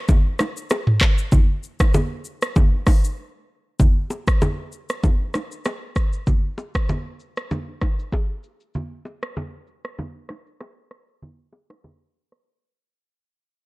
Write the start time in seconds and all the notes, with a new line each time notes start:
0.09 kick, high bongo, low bongo, low conga, shaker
0.39 cross-stick, low bongo, shaker
0.57 shaker
0.70 cross-stick, high bongo, shaker
0.87 mid tom
1.01 kick, cross-stick, clap, shaker
1.18 shaker
1.32 kick, low conga, shaker
1.63 shaker
1.80 kick, cross-stick, low bongo, shaker
1.94 high bongo, low conga, shaker
2.25 shaker
2.42 cross-stick, shaker
2.56 kick, high bongo, low bongo, low conga, shaker
2.87 kick, cross-stick, open hi-hat, low bongo, shaker
3.04 shaker
3.80 kick, low conga, shaker
4.10 high bongo, shaker
4.27 kick, cross-stick, shaker
4.42 high bongo, low conga, shaker
4.72 shaker
4.89 cross-stick, shaker
5.04 kick, high bongo, low bongo, low conga, shaker
5.34 cross-stick, low bongo, shaker
5.52 shaker
5.65 cross-stick, high bongo, shaker
5.96 kick, cross-stick, shaker
6.13 shaker
6.27 kick, low conga, shaker
6.58 high bongo, shaker
6.75 kick, cross-stick, shaker
6.89 high bongo, low conga, shaker
7.20 shaker
7.37 cross-stick, shaker
7.51 high bongo, low bongo, low conga, shaker
7.81 kick, cross-stick, low bongo, shaker
7.99 shaker
8.12 kick, high bongo, shaker
8.43 shaker
8.60 shaker
8.75 low conga, shaker
9.05 high bongo, shaker
9.22 cross-stick, shaker
9.36 high bongo, low conga, shaker
9.67 shaker
9.84 cross-stick, shaker
9.98 high bongo, low bongo, low conga, shaker
10.29 cross-stick, low bongo, shaker
10.46 shaker
10.60 cross-stick, high bongo, shaker
10.91 cross-stick, shaker
11.08 shaker
11.22 low conga
11.53 high bongo
11.70 cross-stick, low bongo, shaker
11.84 high bongo, low conga
12.32 cross-stick